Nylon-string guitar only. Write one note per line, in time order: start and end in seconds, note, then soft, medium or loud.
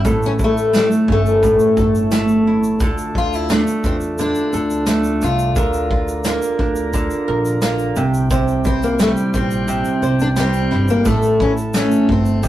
0.00 0.12 G3 medium
0.00 0.12 C4 medium
0.00 0.39 E4 medium
0.05 1.42 A2 medium
0.05 1.77 A4 medium
0.39 2.46 E4 medium
0.73 2.12 A3 medium
1.08 2.87 C#4 medium
1.43 2.87 A2 medium
1.77 2.82 A4 medium
2.12 3.50 A3 medium
2.47 2.88 E4 medium
2.82 4.19 D3 medium
2.82 4.52 A4 medium
3.16 5.22 F4 medium
3.50 4.86 A3 medium
3.85 6.59 D4 medium
4.19 5.56 D3 medium
4.54 5.56 A4 medium
4.87 5.63 A3 medium
5.22 5.91 F4 medium
5.57 6.93 D3 medium
5.57 7.27 A#4 medium
5.91 8.04 F4 medium
6.26 7.61 A#3 medium
6.60 8.04 D4 medium
6.94 8.04 D3 medium
7.28 8.04 A#4 medium
7.63 8.04 A#3 medium
7.96 8.29 C3 medium
8.31 9.67 C3 medium
8.31 10.01 C5 medium
8.66 10.71 E4 medium
8.99 10.36 G3 medium
9.35 11.13 C4 medium
9.68 11.05 C3 medium
10.03 11.05 C5 medium
10.37 11.13 G3 medium
10.71 11.40 E4 medium
11.05 12.42 A2 medium
11.05 12.48 A4 medium
11.40 12.48 E4 medium
11.74 12.48 A3 medium
12.43 12.48 C3 medium